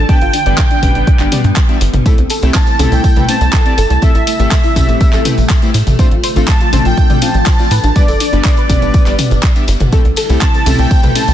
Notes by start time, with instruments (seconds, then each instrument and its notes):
Already playing: ambient pad D3
0.09 analog polysynth G3 B3 D4 G4 B4, ambient pad G3 B3, synth pluck D4, supersaw synth G5, kick, closed hi-hat
0.21 analog synth bass G1, synth pluck F4, closed hi-hat
0.33 synth pluck D4, open hi-hat
0.46 analog synth bass G1, analog polysynth G3 B3 D4 G4 B4, synth pluck D4, closed hi-hat
0.58 synth pluck D4, supersaw synth G5, kick, clap, closed hi-hat
0.71 synth pluck D4, closed hi-hat
0.83 analog synth bass G1, analog polysynth G3 B3 D4 G4 B4, synth pluck D4, kick, mid tom, open hi-hat, high conga
0.95 analog synth bass G1, synth pluck D4, closed hi-hat
1.07 synth pluck D4, kick, closed hi-hat
1.19 analog synth bass G1, analog polysynth G3 B3 D4 G4 B4, synth pluck D4, clap, closed hi-hat
1.32 analog polysynth G3 B3 D4 G4 D5, mid tom, open hi-hat, high conga
1.44 analog synth bass G2, closed hi-hat
1.56 kick, clap, closed hi-hat
1.69 analog polysynth G3 B3 D4 G4 E5, closed hi-hat
1.81 analog synth bass G1, open hi-hat
1.93 analog synth bass G1, closed hi-hat, mid tom
2.06 ambient pad C3 G3 A3 E4, analog polysynth A3 C4 E4 G4 A4, synth pluck A4, kick, closed hi-hat, tambourine
2.18 analog synth bass C2, synth pluck C4, closed hi-hat
2.30 synth pluck A4, open hi-hat, tambourine
2.42 analog synth bass C2, analog polysynth A3 C4 E4 G4 A4, synth pluck C4, closed hi-hat, tambourine
2.54 supersaw synth A5, kick, clap, closed hi-hat, tambourine
2.67 synth pluck C4, closed hi-hat, tambourine
2.79 analog synth bass C2, analog polysynth A3 C4 E4 G4 A4, synth pluck A4, mid tom, open hi-hat, tambourine, high conga
2.92 analog synth bass C2, synth pluck C4, supersaw synth G5, closed hi-hat, tambourine
3.04 synth pluck C4, kick, closed hi-hat, tambourine
3.16 analog synth bass C2, analog polysynth A3 C4 E4 G4 A4, synth pluck B4, closed hi-hat, mid tom, tambourine
3.29 analog polysynth A3 C4 E4 G4 C5, synth pluck C4, supersaw synth A5, open hi-hat, tambourine, high conga
3.41 analog synth bass C2, synth pluck C4, closed hi-hat, tambourine
3.53 synth pluck A4, kick, clap, closed hi-hat, tambourine
3.65 analog polysynth A3 C4 E4 G4 D5, synth pluck C4, closed hi-hat, tambourine
3.78 analog synth bass G1, synth pluck A4, open hi-hat, tambourine
3.90 analog synth bass C2, synth pluck A3, closed hi-hat, tambourine
4.02 ambient pad C3 A3, analog polysynth A3 C4 E4 G4 A4, synth pluck A3, supersaw synth E5, kick, closed hi-hat, tambourine
4.15 analog synth bass A1, synth pluck E4, closed hi-hat, tambourine
4.27 synth pluck A3, open hi-hat, tambourine
4.39 analog synth bass A1, synth pluck A3, analog polysynth A3 C4 E4 G4 A4, closed hi-hat, tambourine
4.51 synth pluck A3, supersaw synth E5, kick, clap, closed hi-hat, tambourine
4.63 synth pluck E4, closed hi-hat, tambourine
4.76 analog synth bass A1, synth pluck A3, analog polysynth A3 C4 E4 G4 A4, kick, mid tom, open hi-hat, tambourine, high conga
4.88 analog synth bass A1, synth pluck A3, closed hi-hat, tambourine
5.01 synth pluck A3, kick, closed hi-hat, tambourine
5.13 analog synth bass A1, analog polysynth A3 C4 E4 G4 A4, synth pluck A4, clap, closed hi-hat, tambourine
5.25 analog polysynth A3 C4 E4 G4 B4, mid tom, open hi-hat, tambourine, high conga
5.38 analog synth bass A1, closed hi-hat, tambourine
5.50 kick, clap, closed hi-hat, tambourine
5.62 analog polysynth A3 C4 E4 G4 C5, closed hi-hat, tambourine
5.74 analog synth bass A2, open hi-hat, tambourine
5.87 analog synth bass A1, closed hi-hat, mid tom, tambourine
5.99 ambient pad D3 F3, analog polysynth A3 C4 D4 F4 A4, synth pluck C5, kick, closed hi-hat, tambourine
6.11 analog synth bass A1, synth pluck F4, closed hi-hat
6.24 synth pluck C5, open hi-hat, tambourine
6.36 analog synth bass A1, analog polysynth A3 C4 D4 F4 A4, synth pluck F4, closed hi-hat, tambourine
6.48 synth pluck F4, supersaw synth A5, kick, clap, closed hi-hat, tambourine
6.61 synth pluck F4, closed hi-hat, tambourine
6.73 analog synth bass A1, analog polysynth A3 C4 D4 F4 A4, synth pluck C5, mid tom, open hi-hat, tambourine, high conga
6.85 analog synth bass A1, synth pluck F4, supersaw synth G5, closed hi-hat, tambourine
6.97 synth pluck F4, kick, closed hi-hat, tambourine
7.10 analog synth bass A1, analog polysynth A3 C4 D4 F4 A4, synth pluck D5, closed hi-hat, mid tom, tambourine
7.21 analog polysynth A3 C4 D4 F4 C5, synth pluck F4, supersaw synth A5, open hi-hat, tambourine, high conga
7.34 analog synth bass A1, synth pluck F4, closed hi-hat, tambourine
7.46 synth pluck C5, kick, clap, closed hi-hat, tambourine
7.59 analog polysynth A3 C4 D4 F4 D5, synth pluck F4, closed hi-hat, tambourine
7.71 analog synth bass A2, synth pluck B4, open hi-hat, tambourine
7.83 analog synth bass A1, synth pluck D4, closed hi-hat, tambourine
7.96 analog polysynth G3 B3 D4 G4 B4, ambient pad G3 B3, supersaw synth D5, kick, closed hi-hat, tambourine
8.08 analog synth bass G1, synth pluck A4, closed hi-hat, tambourine
8.20 synth pluck D4, open hi-hat, tambourine
8.33 analog synth bass G1, analog polysynth G3 B3 D4 G4 B4, synth pluck D4, closed hi-hat, tambourine
8.45 synth pluck D4, supersaw synth D5, kick, clap, closed hi-hat, tambourine
8.57 synth pluck B4, closed hi-hat, tambourine
8.69 analog synth bass G1, analog polysynth G3 B3 D4 G4 B4, synth pluck D4, kick, mid tom, open hi-hat, tambourine, high conga
8.82 analog synth bass G1, synth pluck D4, closed hi-hat, tambourine
8.94 synth pluck D4, kick, closed hi-hat, tambourine
9.06 analog synth bass G1, analog polysynth G3 B3 D4 G4 B4, synth pluck D5, clap, closed hi-hat, tambourine
9.19 mid tom, open hi-hat, tambourine, high conga
9.31 analog synth bass G1, closed hi-hat, tambourine
9.43 kick, clap, closed hi-hat, tambourine
9.56 analog polysynth G3 B3 D4 G4 E5, closed hi-hat, tambourine
9.68 analog synth bass G1, open hi-hat, tambourine
9.80 analog synth bass G1, closed hi-hat, mid tom, tambourine
9.92 ambient pad C3 A3 E4, analog polysynth A3 C4 E4 G4 A4, synth pluck A4, kick, closed hi-hat, tambourine
10.05 analog synth bass C2, synth pluck C4, closed hi-hat
10.16 synth pluck A4, open hi-hat, ride, tambourine
10.30 analog synth bass C2, analog polysynth A3 C4 E4 G4 A4, synth pluck C4, closed hi-hat, tambourine
10.41 synth pluck C4, supersaw synth A5, kick, clap, closed hi-hat, tambourine
10.54 synth pluck C4, closed hi-hat, tambourine
10.66 analog synth bass C2, analog polysynth A3 C4 E4 G4 A4, synth pluck A4, mid tom, open hi-hat, ride, tambourine, high conga
10.78 analog synth bass C2, synth pluck C4, supersaw synth G5, closed hi-hat, tambourine
10.91 synth pluck C4, kick, closed hi-hat, tambourine
11.03 analog synth bass C2, analog polysynth A3 C4 E4 G4 A4, synth pluck B4, closed hi-hat, mid tom, tambourine
11.15 analog polysynth A3 C4 E4 G4 C5, synth pluck C4, supersaw synth A5, open hi-hat, ride, tambourine, high conga
11.28 analog synth bass C2, synth pluck C4, closed hi-hat, tambourine